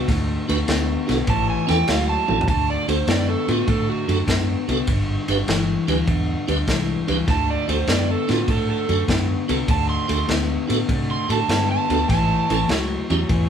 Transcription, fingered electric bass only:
0, 0, Header, 1, 2, 480
1, 0, Start_track
1, 0, Tempo, 600601
1, 64, Time_signature, 4, 2, 24, 8
1, 10781, End_track
2, 0, Start_track
2, 0, Title_t, "Fingered electric bass"
2, 0, Program_c, 0, 33
2, 66, Note_on_c, 0, 38, 85
2, 283, Note_off_c, 0, 38, 0
2, 393, Note_on_c, 0, 38, 89
2, 495, Note_off_c, 0, 38, 0
2, 545, Note_on_c, 0, 38, 99
2, 762, Note_off_c, 0, 38, 0
2, 872, Note_on_c, 0, 35, 110
2, 974, Note_off_c, 0, 35, 0
2, 1020, Note_on_c, 0, 33, 93
2, 1239, Note_off_c, 0, 33, 0
2, 1352, Note_on_c, 0, 40, 91
2, 1453, Note_off_c, 0, 40, 0
2, 1506, Note_on_c, 0, 38, 85
2, 1723, Note_off_c, 0, 38, 0
2, 1829, Note_on_c, 0, 33, 92
2, 1931, Note_off_c, 0, 33, 0
2, 1980, Note_on_c, 0, 38, 77
2, 2198, Note_off_c, 0, 38, 0
2, 2305, Note_on_c, 0, 38, 77
2, 2408, Note_off_c, 0, 38, 0
2, 2456, Note_on_c, 0, 42, 98
2, 2675, Note_off_c, 0, 42, 0
2, 2785, Note_on_c, 0, 45, 98
2, 2888, Note_off_c, 0, 45, 0
2, 2939, Note_on_c, 0, 45, 92
2, 3157, Note_off_c, 0, 45, 0
2, 3263, Note_on_c, 0, 42, 88
2, 3366, Note_off_c, 0, 42, 0
2, 3417, Note_on_c, 0, 42, 92
2, 3635, Note_off_c, 0, 42, 0
2, 3742, Note_on_c, 0, 36, 82
2, 3846, Note_off_c, 0, 36, 0
2, 3898, Note_on_c, 0, 31, 84
2, 4116, Note_off_c, 0, 31, 0
2, 4225, Note_on_c, 0, 31, 87
2, 4328, Note_off_c, 0, 31, 0
2, 4374, Note_on_c, 0, 31, 93
2, 4593, Note_off_c, 0, 31, 0
2, 4700, Note_on_c, 0, 38, 98
2, 4804, Note_off_c, 0, 38, 0
2, 4856, Note_on_c, 0, 40, 100
2, 5075, Note_off_c, 0, 40, 0
2, 5181, Note_on_c, 0, 38, 94
2, 5285, Note_off_c, 0, 38, 0
2, 5335, Note_on_c, 0, 36, 87
2, 5554, Note_off_c, 0, 36, 0
2, 5663, Note_on_c, 0, 37, 89
2, 5766, Note_off_c, 0, 37, 0
2, 5817, Note_on_c, 0, 38, 98
2, 6035, Note_off_c, 0, 38, 0
2, 6142, Note_on_c, 0, 38, 87
2, 6245, Note_off_c, 0, 38, 0
2, 6294, Note_on_c, 0, 42, 95
2, 6514, Note_off_c, 0, 42, 0
2, 6627, Note_on_c, 0, 45, 104
2, 6729, Note_off_c, 0, 45, 0
2, 6779, Note_on_c, 0, 45, 94
2, 6997, Note_off_c, 0, 45, 0
2, 7106, Note_on_c, 0, 42, 95
2, 7208, Note_off_c, 0, 42, 0
2, 7261, Note_on_c, 0, 42, 89
2, 7478, Note_off_c, 0, 42, 0
2, 7587, Note_on_c, 0, 36, 89
2, 7689, Note_off_c, 0, 36, 0
2, 7740, Note_on_c, 0, 38, 91
2, 7958, Note_off_c, 0, 38, 0
2, 8067, Note_on_c, 0, 38, 77
2, 8170, Note_off_c, 0, 38, 0
2, 8221, Note_on_c, 0, 38, 97
2, 8439, Note_off_c, 0, 38, 0
2, 8547, Note_on_c, 0, 45, 95
2, 8650, Note_off_c, 0, 45, 0
2, 8702, Note_on_c, 0, 48, 83
2, 8920, Note_off_c, 0, 48, 0
2, 9026, Note_on_c, 0, 45, 100
2, 9129, Note_off_c, 0, 45, 0
2, 9179, Note_on_c, 0, 43, 89
2, 9398, Note_off_c, 0, 43, 0
2, 9508, Note_on_c, 0, 38, 84
2, 9611, Note_off_c, 0, 38, 0
2, 9664, Note_on_c, 0, 33, 86
2, 9882, Note_off_c, 0, 33, 0
2, 9989, Note_on_c, 0, 33, 81
2, 10093, Note_off_c, 0, 33, 0
2, 10142, Note_on_c, 0, 37, 98
2, 10361, Note_off_c, 0, 37, 0
2, 10470, Note_on_c, 0, 40, 101
2, 10573, Note_off_c, 0, 40, 0
2, 10625, Note_on_c, 0, 40, 94
2, 10781, Note_off_c, 0, 40, 0
2, 10781, End_track
0, 0, End_of_file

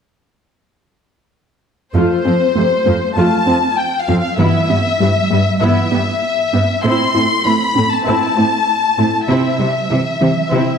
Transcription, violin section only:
0, 0, Header, 1, 2, 480
1, 0, Start_track
1, 0, Tempo, 612245
1, 1524, Time_signature, 4, 2, 24, 8
1, 8452, End_track
2, 0, Start_track
2, 0, Title_t, "Violin section"
2, 0, Program_c, 0, 48
2, 1529, Note_on_c, 0, 72, 52
2, 2455, Note_off_c, 0, 72, 0
2, 2485, Note_on_c, 0, 81, 58
2, 2963, Note_on_c, 0, 79, 51
2, 2964, Note_off_c, 0, 81, 0
2, 3124, Note_off_c, 0, 79, 0
2, 3133, Note_on_c, 0, 77, 49
2, 3287, Note_off_c, 0, 77, 0
2, 3296, Note_on_c, 0, 77, 53
2, 3438, Note_on_c, 0, 76, 64
2, 3447, Note_off_c, 0, 77, 0
2, 4382, Note_off_c, 0, 76, 0
2, 4403, Note_on_c, 0, 76, 60
2, 5344, Note_off_c, 0, 76, 0
2, 5369, Note_on_c, 0, 84, 69
2, 5837, Note_off_c, 0, 84, 0
2, 5846, Note_on_c, 0, 83, 62
2, 6205, Note_off_c, 0, 83, 0
2, 6213, Note_on_c, 0, 81, 53
2, 6317, Note_off_c, 0, 81, 0
2, 6327, Note_on_c, 0, 81, 63
2, 7266, Note_off_c, 0, 81, 0
2, 7285, Note_on_c, 0, 76, 49
2, 8452, Note_off_c, 0, 76, 0
2, 8452, End_track
0, 0, End_of_file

